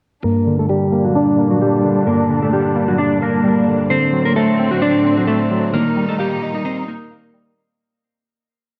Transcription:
0.24 synth keys G2, string section A#2 D3 G3 D4, clean electric guitar A#3 A#4
0.47 synth keys D3
0.59 clean electric guitar A3 A4
0.69 synth keys G3, clean electric guitar G3 G4
0.92 synth keys A#3
1.05 clean electric guitar F#3 F#4
1.15 synth keys D4, clean electric guitar D4 D5
1.38 synth keys A#3
1.50 clean electric guitar F#3 F#4
1.61 synth keys G3, clean electric guitar G3 G4
1.85 synth keys D3
2.07 synth keys G2, clean electric guitar A#3 A#4
2.30 synth keys D3
2.42 clean electric guitar A3 A4
2.53 synth keys G3, clean electric guitar G3 G4
2.76 synth keys A#3
2.88 clean electric guitar F#3 F#4
2.98 clean electric guitar D4 D5, synth keys D4
3.22 synth keys A#3, clean electric guitar A#3 A#4
3.44 synth keys G3
3.68 synth keys D3
3.90 string section A2 D3 F#3 C4, synth keys D3, clean electric guitar C4 C5
4.13 synth keys F#3
4.25 clean electric guitar A#3 A#4
4.36 synth keys A3, clean electric guitar A3 A4
4.59 synth keys C4
4.71 clean electric guitar F#3 F#4
4.82 clean electric guitar D4 D5, synth keys D4
5.05 synth keys C4
5.17 clean electric guitar F#3 F#4
5.27 synth keys A3, clean electric guitar A3 A4
5.51 synth keys F#3
5.74 string section A#2 D#3 G3 D#4, synth keys D#3, clean electric guitar A#3 A#4
5.97 synth keys G3
6.09 clean electric guitar A3 A4
6.19 clean electric guitar G3 G4, synth keys A#3
6.42 synth keys D#4
6.54 clean electric guitar D#4 D#5
6.65 clean electric guitar C4 C5, synth keys D#5
6.88 clean electric guitar A#3 A#4, synth keys D#4
7.11 synth keys A#3
7.34 synth keys G3

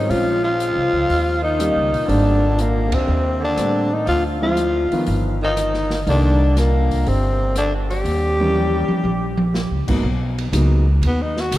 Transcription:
Already playing: grand piano D#4, tenor saxophone D#4
0.08 upright bass A#1, tenor saxophone F3 F4, grand piano G#3 C4 C#4 F4, open hi-hat
0.42 tenor saxophone F3 F4
0.60 closed hi-hat
0.76 upright bass C2
0.93 upright bass C#2
1.09 upright bass D#2, open hi-hat
1.42 tenor saxophone D#3 D#4
1.59 grand piano G3 A#3 C#4 G4, cross-stick, closed hi-hat
1.76 upright bass C#2
1.92 upright bass A#1, open hi-hat
2.06 upright bass G#1, tenor saxophone D3 D4, grand piano G3 A#3 C4 D4, open hi-hat
2.55 tenor saxophone A#2, closed hi-hat
2.61 tenor saxophone A#3
2.89 upright bass D#2, tenor saxophone C3, kick, ride
2.94 tenor saxophone C4
3.08 upright bass D#2
3.40 tenor saxophone D3
3.44 tenor saxophone D4
3.57 upright bass A2, grand piano G3 A#3 C4 D4, cross-stick, closed hi-hat
3.91 tenor saxophone D#3 D#4
4.06 upright bass D2, tenor saxophone F3 F4, open hi-hat
4.41 tenor saxophone F3 F4, grand piano F3 G#3 C4 E4
4.57 closed hi-hat
4.91 grand piano D#3 F3 B3 F4, muted upright bass stroke, open hi-hat
5.06 upright bass G1, open hi-hat
5.42 tenor saxophone D#3 D#4
5.57 cross-stick, closed hi-hat
5.74 snare
5.90 snare, open hi-hat
6.07 upright bass C2, tenor saxophone D3 D4, grand piano D#3 G3 A#3 D4, open hi-hat
6.57 tenor saxophone A#2 A#3, snare, closed hi-hat
6.91 kick, open hi-hat
7.06 upright bass G1, tenor saxophone C3 C4, open hi-hat
7.56 tenor saxophone D3 D4, cross-stick, closed hi-hat
7.90 tenor saxophone G3 G4, open hi-hat
8.05 upright bass D#2, open hi-hat
8.40 grand piano E3 G3 A#3 C#4
8.55 high tom
8.88 muted upright bass stroke, high tom
9.04 upright bass A#1, high tom
9.38 high tom
9.54 snare
9.71 upright bass C#2
9.87 upright bass A#1, grand piano G#2 F#3 A#3 B3 D#4, kick, crash
10.03 upright bass B1
10.38 ride
10.52 upright bass C#2, grand piano F#3 G#3 A#3 B3 D#4, hi-hat pedal, ride
11.02 upright bass D#2, ride
11.07 tenor saxophone B3
11.23 tenor saxophone D#4
11.37 tenor saxophone F#4, snare
11.51 upright bass C#2, hi-hat pedal, ride

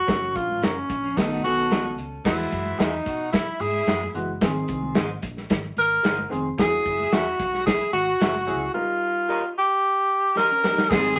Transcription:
Already playing: tenor saxophone F#4
0.07 fingered electric bass F#1, upright piano F#3 C#4 A#4, kick, snare, closed hi-hat, low conga
0.22 muted conga
0.36 fingered electric bass A#1, tenor saxophone F4, kick, closed hi-hat
0.50 high conga
0.62 fingered electric bass F#1, clean electric guitar C#4 F#4 A#4, tenor saxophone C#4, snare, closed hi-hat
0.89 fingered electric bass A#1, kick, closed hi-hat, low conga
1.04 clean electric guitar F3 C#4
1.16 fingered electric bass B1, upright piano D#3 B3 A4, clean electric guitar A3 F4, tenor saxophone D#4, kick, snare, closed hi-hat, muted conga
1.31 clean electric guitar A3 F#4
1.43 fingered electric bass B1, upright piano D#3 B3 A4, clean electric guitar B3 G#4, tenor saxophone F#4, closed hi-hat, high conga
1.58 clean electric guitar C#4 A4
1.71 clean electric guitar F#4 A4 D#5, snare, closed hi-hat
1.84 muted conga, high conga
1.98 fingered electric bass C#2, closed hi-hat
2.24 fingered electric bass E2, upright piano E3 G#3 F#4, tenor saxophone E4, kick, snare, crash, low conga
2.38 muted conga
2.52 fingered electric bass F#2, violin section E4 E5, kick, closed hi-hat
2.65 high conga
2.79 fingered electric bass E2, tenor saxophone D#4, clean electric guitar F#4 G#4 E5, snare, closed hi-hat
2.93 muted conga
3.06 fingered electric bass B2, violin section F#4 F#5, kick, closed hi-hat, low conga
3.32 tenor saxophone E4, violin section E4 E5, kick, snare, closed hi-hat
3.48 muted conga
3.59 fingered electric bass G#2, violin section E4 E5, tenor saxophone G#4, closed hi-hat, high conga
3.87 fingered electric bass F#2, clean electric guitar F#4 G#4 E5, snare, closed hi-hat
4.02 muted conga, high conga
4.14 fingered electric bass F#1, upright piano E3 G#3 F#4, closed hi-hat
4.41 fingered electric bass G#1, upright piano D#3 C4 G#4, kick, snare, closed hi-hat, low conga
4.56 muted conga
4.68 fingered electric bass C2, kick, closed hi-hat
4.83 high conga
4.95 fingered electric bass G#1, clean electric guitar G#4 C5 D#5, snare, closed hi-hat
5.22 fingered electric bass A#1, kick, closed hi-hat, low conga
5.37 snare
5.50 fingered electric bass G#1, kick, snare, closed hi-hat
5.64 muted conga
5.77 fingered electric bass G#1, tenor saxophone A#4, closed hi-hat, high conga
6.03 fingered electric bass G1, clean electric guitar G#4 C5 D#5, snare, closed hi-hat
6.18 high conga
6.30 fingered electric bass F1, upright piano D#3 C4 G#4, closed hi-hat
6.58 fingered electric bass E1, upright piano F#3 E4 G#4, tenor saxophone G#4, kick, snare, closed hi-hat, low conga
6.72 muted conga
6.85 fingered electric bass F#1, violin section E4 E5, kick, closed hi-hat
7.00 high conga
7.12 fingered electric bass E1, clean electric guitar F#4 G#4 E5, tenor saxophone F#4, snare, closed hi-hat, muted conga
7.40 fingered electric bass B1, violin section F#4 F#5, kick, closed hi-hat, low conga
7.54 snare
7.66 violin section E4 E5, tenor saxophone G#4, kick, snare, closed hi-hat
7.93 fingered electric bass G#1, violin section F#4 F#5, tenor saxophone F#4, closed hi-hat, high conga
8.20 fingered electric bass F#1, clean electric guitar F#4 G#4 E5, snare, closed hi-hat, muted conga
8.34 high conga
8.47 fingered electric bass C#2, upright piano F#3 E4 G#4, closed hi-hat
8.74 upright piano G3 D#4 A#4, tenor saxophone F4
9.29 clean electric guitar G4 A#4 D#5
9.58 tenor saxophone G4
10.36 clean electric guitar G4 A#4 D#5, tenor saxophone A#4, snare
10.51 clean electric guitar C#4 A#4
10.63 upright piano G3 D#4 A#4, clean electric guitar A#3 G4, snare
10.77 clean electric guitar G3 D#4, snare
10.90 fingered electric bass G#1, upright piano D#3 G#3 C4 G4, tenor saxophone G#4, kick, snare, crash, muted conga, low conga
10.98 upright piano G#4
11.05 muted conga
11.16 tenor saxophone G#4

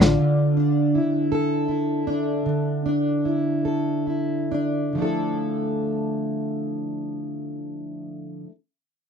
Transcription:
Already playing: fingered electric bass A1, steel-string acoustic guitar D3 D4, french horn section F4
0.01 steel-string acoustic guitar F4, snare
0.19 steel-string acoustic guitar D3
0.57 steel-string acoustic guitar D4
0.95 steel-string acoustic guitar E4
1.32 steel-string acoustic guitar A4
1.68 steel-string acoustic guitar E4
2.07 steel-string acoustic guitar D4
2.46 steel-string acoustic guitar D3
2.86 steel-string acoustic guitar D4
3.25 steel-string acoustic guitar E4
3.65 steel-string acoustic guitar A4
4.07 steel-string acoustic guitar E4
4.51 steel-string acoustic guitar D4
4.93 steel-string acoustic guitar D3 F3
4.97 steel-string acoustic guitar A3 D4 E4
5.02 steel-string acoustic guitar A4

